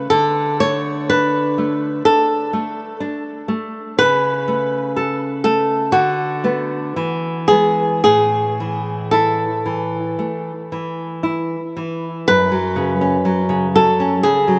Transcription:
Already playing: A3
0.10 D3 A4
0.60 A3 C#5
1.09 D4 B4
1.58 A3
2.05 D4 A4
2.53 A3
3.00 D4
3.48 A3
3.99 C#3 B4
4.48 A3
4.96 A4
5.44 A3 A4
5.92 D3 F#4
6.44 A3 B3
6.96 E3
7.48 G#3 B3 G#4
8.04 A2 G#4
8.60 E3
9.11 E4 A4
9.66 E3
10.19 A3
10.72 E3
11.23 E4
11.77 E3
12.28 F#2 B4
12.51 F#3
12.76 C#3
13.01 C#4
13.25 F#3
13.49 C#3
13.75 F#3 A4
14.00 C#4
14.23 C#3 G#4
14.48 F#3

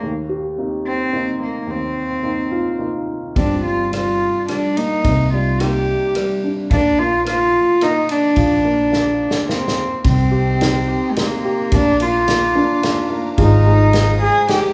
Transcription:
0.03 D#2
0.29 G4
0.58 A#3 C4 D#4
0.87 C4
1.12 A#3 C4 D#4
1.43 A#3
1.67 D#2 C4
2.23 A#3 C4 D#4
2.52 F4
2.79 A#3 C4 D#4
3.36 G1 G3 C4 D4, kick, ride
3.55 F4
3.64 G3 F4
3.92 G3 F4, cross-stick, ride
4.48 G3 D4, cross-stick, ride
4.77 A#3 D#4, ride
5.04 C2 C3, kick, ride
5.33 G3 F4
5.60 A#3 D#4 G4, cross-stick, ride
6.15 G3, cross-stick, ride
6.44 D4
6.71 A#1 A#3 D4, kick, ride
6.99 A#3 F4
7.25 A#3 F4, cross-stick, ride
7.81 A#3 D#4, cross-stick, ride
8.09 D4, ride
8.36 A#1 F3, kick, ride
8.65 A#3
8.92 A#3, snare
9.31 snare
9.49 A#3 C4, snare
9.68 snare
10.04 C2 C4 A#4 D#5 G5 C6, kick, ride
10.31 G4
10.60 C4 D#4, snare, ride
10.88 G4
11.11 G#3
11.16 A#3 C4, snare, ride
11.45 G4
11.70 A#1 A#3 D4 F5 A#5 D6, kick, ride
12.00 A#3 F4, ride
12.28 A#3, snare, ride
12.55 A#3 D4
12.83 A#3, snare, ride
13.10 A#3
13.38 G#1 G#3 D#4 F4 C5 D#6, kick, ride
13.66 G#3
13.93 G#3, snare, ride
14.21 G#3 G#4
14.48 G#3 G4, snare, ride

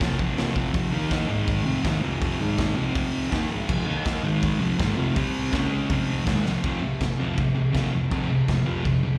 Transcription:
0.00 F2 C3 F3, kick, snare, open hi-hat
0.19 F2 C3 F3, kick
0.37 F2 C3, snare, open hi-hat
0.41 F3
0.56 C3 F3, kick
0.73 F2 C3 F3, kick, open hi-hat
0.91 D#3 A#3 D#4
1.11 kick, snare, open hi-hat
1.28 G#2 D#3 G#3
1.47 kick, open hi-hat
1.65 F2 C3 F3
1.84 G#2 D#3 G#3, kick, snare, open hi-hat
2.02 F2 C3 F3
2.22 kick, open hi-hat
2.40 G#2 D#3 G#3
2.58 kick, snare, open hi-hat
2.76 F2 C3 F3
2.95 kick, open hi-hat
3.30 D#3 A#3 D#4, kick, snare, open hi-hat
3.49 G#2 D#3 G#3
3.67 F2 C3 F3, kick, crash
3.86 D#3 A#3 D#4
4.05 kick, snare, open hi-hat
4.22 G#2 D#3 G#3
4.43 kick, open hi-hat
4.59 F2 C3 F3
4.78 G#2 D#3 G#3, kick, snare, open hi-hat
4.95 F2 C3 F3
5.15 C3 G3 C4, kick, open hi-hat
5.52 C#3 G#3 C#4, kick, snare, open hi-hat
5.89 F2 C3 F3, kick, open hi-hat
6.25 G#2 D#3 G#3, kick, snare, open hi-hat
6.44 F2 C3 F3, snare
6.63 F2 C3 F3, kick, crash
6.82 F2 C3
7.01 F2 C3, kick, snare, crash
7.19 F2 C3 F3
7.37 F2 C3, kick, crash
7.55 F2 C3
7.73 F2 C3 F3, kick, snare, crash
7.93 F2 C3
8.10 F2 C3 F3, kick, crash
8.29 F2 C3
8.48 F2 C3, kick, snare, crash
8.66 F2 C3 F3
8.85 F2 C3, kick, crash
9.03 F2 C3

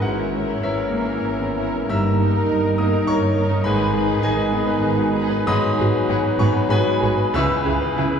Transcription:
0.00 G#1 G#2 E3 A#3 C#4 E4 F#4 A#4 C#5 F#5 A#5
0.16 A#4
0.32 C#4 E4 A#4 C#5
0.47 A#4
0.62 G#1 G#2 E3 C#4 E4 A#4 C#5 E5 A#5
0.77 A#4
0.91 A#3 E4 A#4 C#5
1.07 A#4
1.23 G#1 G#2 C#4
1.39 B3
1.56 E4 A#4 C#5
1.74 C#4
1.88 G1 G2 D#3 D#4 A#4 E5 A#5 E6
2.05 A#4
2.20 D#4 A#4
2.34 A#4
2.49 G1 G2 D#4
2.64 A#4
2.78 A#3 D#4 A#4 D#5 D#6
2.93 A#4
3.07 G1 G2 D#4 C#5 C#6
3.22 C#4
3.35 D#4 A#4
3.51 D#4
3.64 G#1 G#2 D#3 B3 D#4 G#4 B4 G#5 B5
3.80 B4
3.94 D#4 G#4 B4
4.08 B4
4.22 G#1 G#2 D#3 D#4 G#4 B4 D#5 G#5
4.37 B4
4.52 B3 D#4 G#4 B4
4.67 B4
4.82 G#1 G#2 G#4
4.97 F#4
5.14 D#4 G#4 B4
5.30 B4
5.47 G#1 G#2 F#3 D#4 F#4 G#4 B4 D#5 G#5 B5 D#6
5.63 B4
5.78 G#1 G#2 F#4 G#4 B4
5.95 B4
6.08 G#1 G#2 F#4 G#4 B4
6.23 B4
6.38 G#1 G#2 B3 F#4 G#4 B4 C#5 C#6
6.53 B4
6.69 G#1 G#2 F#4 G#4 B4 G#5 B5
6.84 F#4
7.00 G#1 G#2 F#4 G#4 B4
7.17 B4
7.34 C#2 C#3 E3 B3 C#4 E4 G#4 B4 E5 C#6 E6
7.49 B4
7.65 C#2 C#3 E4 G#4 B4
7.82 B4
7.96 C#2 C#3 E4 G#4 B4
8.11 B4

